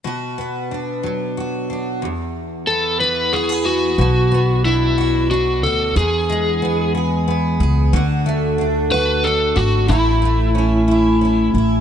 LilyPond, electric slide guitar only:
\new Staff \with { instrumentName = "Electric slide guitar" } { \time 6/8 \key b \dorian \tempo 4. = 61 r2. | r4 a'8 b'8 gis'8 fis'8~ | fis'4 e'4 fis'8 a'8 | gis'4. r4. |
r4. b'8 a'8 fis'8 | e'2~ e'8 r8 | }